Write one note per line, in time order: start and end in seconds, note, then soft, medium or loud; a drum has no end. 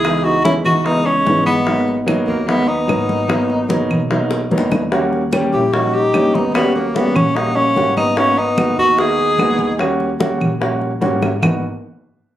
0.00 0.60 C#2 medium
0.00 0.27 E4 medium
0.00 0.25 G#4 loud
0.04 0.33 E3 medium
0.04 0.33 G#3 medium
0.04 0.34 B3 medium
0.04 0.34 D#4 medium
0.04 high bongo medium
0.04 high conga soft
0.04 claves medium
0.24 0.44 D#4 medium
0.24 0.44 F#4 medium
0.24 high bongo soft
0.24 high conga soft
0.44 0.73 E3 medium
0.44 0.74 G#3 medium
0.44 0.74 B3 medium
0.44 0.54 C#4 medium
0.44 0.74 D#4 medium
0.44 0.54 E4 medium
0.44 high bongo medium
0.44 high conga medium
0.65 1.23 C#2 medium
0.65 0.87 D#4 medium
0.65 0.86 F#4 medium
0.65 high bongo soft
0.65 high conga soft
0.65 low conga medium
0.65 claves medium
0.85 1.14 E3 medium
0.85 1.15 G#3 medium
0.85 1.08 B3 medium
0.85 1.15 B3 medium
0.85 1.07 D#4 loud
0.85 1.15 D#4 medium
0.85 high bongo medium
0.85 high conga soft
1.06 1.46 G#3 medium
1.06 1.45 C#4 loud
1.06 high conga soft
1.26 2.22 G#1 medium
1.26 1.55 E3 medium
1.26 1.55 G#3 medium
1.26 1.55 B3 medium
1.26 1.55 D#4 medium
1.26 high bongo soft
1.26 low bongo medium
1.26 high conga medium
1.46 2.04 G#3 medium
1.46 2.03 B3 medium
1.46 high bongo soft
1.46 high conga medium
1.46 claves medium
1.67 1.95 F#3 medium
1.67 1.96 A#3 medium
1.67 1.96 B3 medium
1.67 1.96 D#4 medium
1.67 high bongo medium
1.67 high conga soft
1.88 high bongo soft
1.88 high conga soft
2.06 2.36 F#3 loud
2.06 2.36 A#3 medium
2.06 2.36 B3 medium
2.06 2.36 D#4 loud
2.06 high bongo medium
2.06 high conga medium
2.06 claves medium
2.27 2.85 D#2 medium
2.27 2.48 F#3 medium
2.27 2.49 A#3 medium
2.27 high bongo soft
2.27 high conga soft
2.46 2.76 F#3 medium
2.46 2.69 G#3 medium
2.46 2.77 A#3 medium
2.46 2.69 B3 medium
2.46 2.77 B3 medium
2.46 2.77 D#4 medium
2.46 high bongo medium
2.46 high conga soft
2.68 3.90 B3 medium
2.68 3.90 D#4 medium
2.68 high conga soft
2.87 3.84 G#1 medium
2.87 3.17 F#3 medium
2.87 3.17 A#3 medium
2.87 3.17 B3 medium
2.87 3.17 D#4 medium
2.87 high bongo soft
2.87 low bongo medium
2.87 high conga medium
2.87 claves medium
3.09 high bongo soft
3.09 high conga medium
3.28 3.58 F#3 medium
3.28 3.58 A#3 medium
3.28 3.58 B3 medium
3.28 3.58 D#4 loud
3.28 high bongo medium
3.28 high conga soft
3.28 claves medium
3.50 high bongo soft
3.50 high conga soft
3.69 3.98 F#3 loud
3.69 3.98 A#3 medium
3.69 3.99 B3 medium
3.69 3.99 D#4 loud
3.69 high bongo medium
3.69 high conga medium
3.90 4.47 B1 medium
3.90 high bongo soft
3.90 high conga soft
3.90 low conga medium
3.90 claves medium
4.10 4.39 F#3 medium
4.10 4.39 A#3 medium
4.10 4.40 B3 medium
4.10 4.40 D#4 loud
4.10 high bongo medium
4.10 high conga soft
4.31 high bongo medium
4.31 high conga soft
4.51 5.47 D#2 medium
4.51 4.80 F#3 medium
4.51 4.80 A#3 medium
4.51 4.81 B3 medium
4.51 4.81 D#4 medium
4.51 high conga medium
4.58 low bongo medium
4.72 low bongo loud
4.72 high conga medium
4.72 claves medium
4.92 5.20 G3 medium
4.92 5.21 A#3 medium
4.92 5.21 C#4 medium
4.92 5.21 F#4 loud
4.92 high bongo medium
5.12 high bongo soft
5.12 high conga soft
5.33 5.61 G3 loud
5.33 5.61 A#3 medium
5.33 5.62 C#4 medium
5.33 5.62 G4 loud
5.33 high bongo medium
5.33 high conga medium
5.33 claves medium
5.53 6.10 A#1 medium
5.53 5.77 E4 medium
5.53 5.75 G4 medium
5.53 high bongo soft
5.53 high conga soft
5.73 6.02 G3 medium
5.73 6.03 A#3 medium
5.73 6.03 C#4 medium
5.73 5.95 D#4 medium
5.73 5.96 F#4 medium
5.73 6.03 F#4 medium
5.73 high bongo medium
5.73 high conga soft
5.94 6.37 D#4 medium
5.94 6.36 G4 medium
5.94 high conga soft
6.14 7.10 D#2 medium
6.14 6.43 G3 medium
6.14 6.43 A#3 medium
6.14 6.43 C#4 medium
6.14 6.43 D#4 medium
6.14 high bongo soft
6.14 low bongo medium
6.14 high conga medium
6.14 claves medium
6.34 6.55 B3 medium
6.34 6.54 D#4 medium
6.34 high bongo soft
6.34 high conga medium
6.54 6.83 G3 medium
6.54 6.74 G3 medium
6.54 6.83 A#3 medium
6.54 6.73 B3 medium
6.54 6.83 C#4 medium
6.54 6.84 F#4 medium
6.54 high bongo medium
6.54 high conga soft
6.54 claves medium
6.75 6.97 F#3 medium
6.75 6.97 A#3 medium
6.75 high bongo soft
6.75 high conga soft
6.95 7.24 G3 medium
6.95 7.18 G3 medium
6.95 7.24 A#3 medium
6.95 7.17 B3 medium
6.95 7.24 C#4 medium
6.95 7.24 F#4 medium
6.95 high bongo medium
6.95 high conga medium
7.15 7.72 A#1 medium
7.15 7.36 A#3 medium
7.15 7.37 C#4 medium
7.15 high bongo soft
7.15 high conga soft
7.15 low conga medium
7.15 claves medium
7.35 7.64 G3 medium
7.35 7.64 A#3 medium
7.35 7.56 A#3 medium
7.35 7.65 C#4 medium
7.35 7.57 D#4 loud
7.35 7.65 F#4 medium
7.35 high bongo medium
7.35 high conga soft
7.56 7.96 A#3 medium
7.56 7.96 C#4 loud
7.56 high conga soft
7.75 8.72 G#1 medium
7.75 8.05 G3 medium
7.75 8.05 A#3 medium
7.75 8.05 C#4 medium
7.75 8.05 F#4 medium
7.75 high bongo soft
7.75 low bongo medium
7.75 high conga medium
7.97 8.19 B3 medium
7.97 8.19 D#4 loud
7.97 high bongo soft
7.97 high conga medium
7.97 claves medium
8.16 8.45 A#3 medium
8.16 8.40 A#3 medium
8.16 8.46 B3 medium
8.16 8.39 C#4 medium
8.16 8.46 D#4 medium
8.16 8.46 F#4 medium
8.16 high bongo medium
8.16 high conga soft
8.37 8.78 B3 medium
8.37 8.78 D#4 loud
8.37 high bongo soft
8.37 high conga soft
8.58 8.86 A#3 medium
8.58 8.87 B3 medium
8.58 8.87 D#4 medium
8.58 8.87 F#4 medium
8.58 high bongo medium
8.58 high conga medium
8.58 claves medium
8.77 9.35 D#2 medium
8.77 8.98 D#4 medium
8.77 9.01 F#4 loud
8.77 high bongo soft
8.77 high conga soft
8.98 9.27 A#3 medium
8.98 9.27 B3 medium
8.98 9.80 D#4 medium
8.98 9.27 D#4 medium
8.98 9.27 F#4 medium
8.98 9.80 G#4 loud
8.98 high bongo medium
8.98 high conga soft
9.18 high conga soft
9.38 10.35 D#2 medium
9.38 9.68 A#3 medium
9.38 9.68 B3 medium
9.38 9.68 D#4 medium
9.38 9.68 F#4 medium
9.38 high bongo soft
9.38 low bongo medium
9.38 high conga medium
9.38 claves medium
9.59 high bongo soft
9.59 high conga medium
9.79 10.08 G3 medium
9.79 10.08 A#3 medium
9.79 10.08 C#4 medium
9.79 10.09 F#4 loud
9.79 high bongo medium
9.79 high conga soft
9.79 claves medium
10.00 high bongo soft
10.00 high conga soft
10.20 10.49 G3 medium
10.20 10.49 A#3 medium
10.20 10.49 C#4 medium
10.20 10.49 F#4 loud
10.20 high bongo medium
10.20 high conga loud
10.40 10.98 A#1 medium
10.40 high bongo soft
10.40 high conga soft
10.40 low conga medium
10.40 claves medium
10.60 10.90 G3 medium
10.60 10.90 A#3 medium
10.60 10.90 C#4 medium
10.60 10.90 F#4 medium
10.60 high bongo medium
10.60 high conga soft
10.81 high conga soft
11.01 11.38 G#1 loud
11.01 11.30 G3 medium
11.01 11.30 A#3 medium
11.01 11.30 C#4 medium
11.01 11.31 F#4 loud
11.01 high bongo soft
11.01 low bongo medium
11.01 high conga medium
11.22 high bongo medium
11.22 high conga medium
11.22 claves medium
11.42 11.62 G#1 medium
11.42 11.62 A#3 medium
11.42 11.62 B3 medium
11.42 11.62 D#4 medium
11.42 11.62 F#4 medium
11.42 low bongo medium
11.42 low conga medium
11.42 claves loud